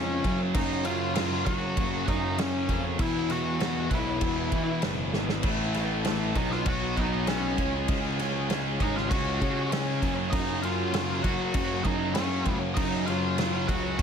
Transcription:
Already playing: F2 C#3 G#3 C#4 G#4 C#5
0.23 F#2 C#3 F#3 A#3 A#4, kick, crash
0.54 F#2 C#3 F#3 D#4 D#5, kick, crash
0.85 F#2 C#3 F#3 F4 F5, crash
1.15 F#2 C#3 F#3 F4 F5, snare, crash
1.46 F#2 C#3 F#3 F#4 F#5, kick, crash
1.77 F#2 C#3 F#3, kick, crash
2.08 F#2 C#3 F#3 D#4 D#5, kick, crash
2.38 F#2 C#3 F#3 C#4 C#5, snare, crash
2.68 F2 F#2 C#3 F#3, kick, crash
2.98 E2 B2 E3 B3 E4 B4 E5, kick, crash
3.29 E2 B2 E3 F#4 F#5, snare, crash
3.60 E2 B2 E3, snare, crash
3.91 B1 E2 B2 E3 E4, kick, crash
3.95 E5
4.21 E2 B2 E3, kick, crash
4.51 E2 B2 E3, kick, crash
4.82 F#1 E2 B2 E3, snare, crash
5.13 G#1 E2 B2 E3, snare
5.29 snare
5.43 A1 A2 E3 A3 E4, kick, crash
5.74 A2 E3 A3, snare, crash
6.05 A2 E3 A3, snare, crash
6.35 B1 B2 F#3 B3 D#4 G#4 D#5, kick, crash
6.51 F4 F5, snare
6.65 B1 B2 F#3 B3 F#4 F#5, kick, crash
6.95 B1 B2 F#3 B3, kick, crash
6.99 D#4 D#5
7.26 B2 F#3 B3 C#4 C#5, snare, crash
7.57 C#2 C#3 G#3 C#4, kick, crash
7.87 C#2 C#3 G#3 C#4, kick, crash
8.18 C#3 G#3 C#4, snare, crash
8.49 C#3 G#3 C#4, snare, crash
8.80 G#1 C#3 G#3 C#4 D#4 D#5, kick, crash
8.96 F4 F5, snare
9.10 C#2 C#3 G#3 C#4 F#4 F#5, kick, crash
9.41 C#3 G#3 C#4, kick, crash
9.70 C#3 G#3 C#4 C#5, snare, crash
10.01 F#2 C#3 F#3 A#3 A#4, kick, crash
10.30 F#2 C#3 F#3 D#4 D#5, kick, crash
10.62 F#2 C#3 F#3 F4 F5, crash
10.93 F#2 C#3 F#3, snare, crash
11.23 F#2 C#3 F#3 F#4 F#5, kick, crash
11.54 F#2 C#3 F#3, kick, crash
11.84 F#2 C#3 F#3 D#4 D#5, kick, crash
12.14 F#2 C#3 F#3 C#4 C#5, snare, crash
12.45 F#2 C#3 F#3, kick, crash
12.74 F#2 C#3 F#3 D#4 D#5, kick, crash
13.06 F#2 C#3 F#3 F4 F5, snare, crash
13.37 F#2 C#3 F#3, snare, crash
13.68 C#2 F#2 C#3 F#3 F#4 F#5, kick, crash
13.98 F#2 C#3, kick, crash

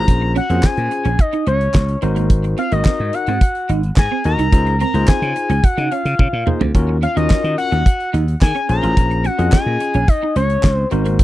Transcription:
Already playing: C#4 F4 G#4 C5 A#5
0.08 A#1, kick, closed hi-hat
0.22 muted clean electric guitar stroke
0.36 C#4 F#5, closed hi-hat
0.50 F2 A#3 C#4 F4 G#4 C5, closed hi-hat
0.63 C#4 G#5, kick, snare, clap
0.77 A#2, closed hi-hat
0.91 muted clean electric guitar stroke, closed hi-hat
1.05 A#1 C#4, closed hi-hat
1.19 D#5, muted clean electric guitar stroke, kick, closed hi-hat
1.33 D#4, closed hi-hat
1.47 C#2 C#4 C#5, closed hi-hat
1.61 closed hi-hat
1.74 C#2, muted clean electric guitar stroke, kick, snare, clap
1.89 closed hi-hat
2.02 G#1 C4 D#4 F#4 A#4 C5, closed hi-hat
2.16 A#3, closed hi-hat
2.30 kick, closed hi-hat
2.44 muted clean electric guitar stroke, closed hi-hat
2.58 C4 F5, closed hi-hat
2.71 G#1 A#3 D#4 F#4 A#4 D#5, closed hi-hat
2.85 C4, kick, snare, clap
3.00 G#2
3.13 F#5, muted clean electric guitar stroke, closed hi-hat
3.27 G#2 C4, closed hi-hat
3.41 kick, closed hi-hat
3.55 closed hi-hat
3.69 G#1 D#4, closed hi-hat
3.83 closed hi-hat
3.96 G#2 G#5, kick, snare, clap
4.11 C4
4.24 D#2 D#4 F#4 A#4 D#5 A#5, muted clean electric guitar stroke, closed hi-hat
4.39 C2 D#4, closed hi-hat
4.52 C#2 D#4 F4 G#4 C5, kick, closed hi-hat
4.66 muted clean electric guitar stroke, closed hi-hat
4.80 C4 A#5, closed hi-hat
4.94 C#2 A#3 D#4 F4 G#4 C5, closed hi-hat
5.08 C4 G#5, kick, snare, clap
5.22 C#3, closed hi-hat
5.36 muted clean electric guitar stroke, closed hi-hat
5.49 C#2 C#4, closed hi-hat
5.64 F#5, muted clean electric guitar stroke, kick, closed hi-hat
5.77 C#3 D#4, closed hi-hat
5.91 C#4 F5, closed hi-hat
6.05 C#3, closed hi-hat
6.19 C#3, muted clean electric guitar stroke, kick, high tom
6.33 A#2
6.46 A#3 D#4 F4 G#4 C5, mid tom
6.61 D2 C4, floor tom
6.74 D#2 C#4 F4 F#4 A#4, kick, closed hi-hat
6.89 muted clean electric guitar stroke
7.02 C#4 F5, closed hi-hat
7.16 D#2 A#3 C#4 F4 F#4 A#4 D#5, closed hi-hat
7.30 C#4, kick, snare, clap
7.44 D#3, closed hi-hat
7.58 F#5, muted clean electric guitar stroke, closed hi-hat
7.71 D#2 C#4, closed hi-hat
7.86 kick, closed hi-hat
8.00 closed hi-hat
8.13 D#2 D#4, closed hi-hat
8.28 closed hi-hat
8.41 D#3 G#5, kick, snare, clap
8.55 C#4, closed hi-hat
8.69 A#1 C#4 F4 G#4 C5 A#5, muted clean electric guitar stroke, closed hi-hat
8.83 A1 F4, closed hi-hat
8.97 A#1, kick, closed hi-hat
9.11 muted clean electric guitar stroke, closed hi-hat
9.24 C#4 F#5, closed hi-hat
9.38 F2 A#3 C#4 F4 G#4 D#5, closed hi-hat
9.52 C#4 G#5, kick, snare, clap
9.66 A#2
9.80 muted clean electric guitar stroke, closed hi-hat
9.94 A#1 C#4, closed hi-hat
10.08 D#5, muted clean electric guitar stroke, kick, closed hi-hat
10.23 D#4
10.36 C#2 C#4 C#5, closed hi-hat
10.50 closed hi-hat
10.63 C#2, muted clean electric guitar stroke, kick, snare, clap
10.73 C5
10.91 G#1 C4 D#4 F#4 A#4 C5, closed hi-hat
11.06 A#3, closed hi-hat
11.19 kick, closed hi-hat

